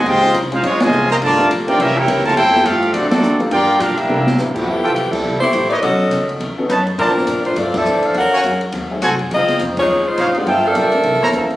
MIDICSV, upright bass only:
0, 0, Header, 1, 3, 480
1, 0, Start_track
1, 0, Tempo, 289296
1, 88, Time_signature, 4, 2, 24, 8
1, 19187, End_track
2, 0, Start_track
2, 0, Title_t, "Upright bass"
2, 0, Program_c, 0, 32
2, 97, Note_on_c, 0, 37, 97
2, 558, Note_off_c, 0, 37, 0
2, 577, Note_on_c, 0, 36, 84
2, 1037, Note_off_c, 0, 36, 0
2, 1048, Note_on_c, 0, 34, 88
2, 1503, Note_off_c, 0, 34, 0
2, 1513, Note_on_c, 0, 36, 97
2, 1984, Note_off_c, 0, 36, 0
2, 2013, Note_on_c, 0, 31, 96
2, 2474, Note_off_c, 0, 31, 0
2, 2491, Note_on_c, 0, 34, 87
2, 2953, Note_off_c, 0, 34, 0
2, 2973, Note_on_c, 0, 36, 86
2, 3434, Note_off_c, 0, 36, 0
2, 3449, Note_on_c, 0, 37, 89
2, 3911, Note_off_c, 0, 37, 0
2, 3924, Note_on_c, 0, 41, 102
2, 4388, Note_off_c, 0, 41, 0
2, 4398, Note_on_c, 0, 43, 93
2, 4864, Note_off_c, 0, 43, 0
2, 4874, Note_on_c, 0, 38, 103
2, 5338, Note_off_c, 0, 38, 0
2, 5348, Note_on_c, 0, 39, 95
2, 5819, Note_off_c, 0, 39, 0
2, 5838, Note_on_c, 0, 43, 92
2, 6303, Note_off_c, 0, 43, 0
2, 6314, Note_on_c, 0, 46, 92
2, 6581, Note_off_c, 0, 46, 0
2, 6790, Note_on_c, 0, 48, 100
2, 7259, Note_off_c, 0, 48, 0
2, 7274, Note_on_c, 0, 45, 93
2, 7741, Note_off_c, 0, 45, 0
2, 7760, Note_on_c, 0, 41, 78
2, 7914, Note_off_c, 0, 41, 0
2, 7914, Note_on_c, 0, 40, 51
2, 8062, Note_off_c, 0, 40, 0
2, 8072, Note_on_c, 0, 36, 61
2, 8223, Note_off_c, 0, 36, 0
2, 8231, Note_on_c, 0, 40, 72
2, 8699, Note_off_c, 0, 40, 0
2, 8715, Note_on_c, 0, 36, 78
2, 8981, Note_off_c, 0, 36, 0
2, 9186, Note_on_c, 0, 33, 91
2, 9657, Note_off_c, 0, 33, 0
2, 9672, Note_on_c, 0, 35, 86
2, 10140, Note_off_c, 0, 35, 0
2, 10148, Note_on_c, 0, 37, 83
2, 10614, Note_off_c, 0, 37, 0
2, 10624, Note_on_c, 0, 39, 83
2, 11096, Note_off_c, 0, 39, 0
2, 11108, Note_on_c, 0, 42, 87
2, 11578, Note_off_c, 0, 42, 0
2, 11592, Note_on_c, 0, 46, 91
2, 12061, Note_off_c, 0, 46, 0
2, 12071, Note_on_c, 0, 45, 84
2, 12540, Note_off_c, 0, 45, 0
2, 12560, Note_on_c, 0, 43, 83
2, 13022, Note_off_c, 0, 43, 0
2, 13032, Note_on_c, 0, 41, 90
2, 13501, Note_off_c, 0, 41, 0
2, 13525, Note_on_c, 0, 39, 89
2, 13988, Note_off_c, 0, 39, 0
2, 14006, Note_on_c, 0, 42, 80
2, 14469, Note_off_c, 0, 42, 0
2, 14492, Note_on_c, 0, 39, 88
2, 14953, Note_off_c, 0, 39, 0
2, 14970, Note_on_c, 0, 36, 84
2, 15128, Note_on_c, 0, 32, 54
2, 15153, Note_off_c, 0, 36, 0
2, 15267, Note_off_c, 0, 32, 0
2, 15277, Note_on_c, 0, 30, 66
2, 15428, Note_off_c, 0, 30, 0
2, 15455, Note_on_c, 0, 37, 92
2, 15914, Note_off_c, 0, 37, 0
2, 15930, Note_on_c, 0, 41, 81
2, 16392, Note_off_c, 0, 41, 0
2, 16412, Note_on_c, 0, 39, 88
2, 16873, Note_off_c, 0, 39, 0
2, 16890, Note_on_c, 0, 32, 80
2, 17352, Note_off_c, 0, 32, 0
2, 17364, Note_on_c, 0, 31, 83
2, 17829, Note_off_c, 0, 31, 0
2, 17845, Note_on_c, 0, 34, 89
2, 18310, Note_off_c, 0, 34, 0
2, 18324, Note_on_c, 0, 36, 89
2, 18490, Note_off_c, 0, 36, 0
2, 18490, Note_on_c, 0, 34, 52
2, 18635, Note_off_c, 0, 34, 0
2, 18645, Note_on_c, 0, 31, 68
2, 18793, Note_off_c, 0, 31, 0
2, 18809, Note_on_c, 0, 40, 88
2, 19187, Note_off_c, 0, 40, 0
2, 19187, End_track
3, 0, Start_track
3, 0, Title_t, "Muted upright bass strokes"
3, 6609, Note_on_c, 9, 29, 43
3, 6775, Note_off_c, 9, 29, 0
3, 8995, Note_on_c, 9, 29, 41
3, 9161, Note_off_c, 9, 29, 0
3, 19187, End_track
0, 0, End_of_file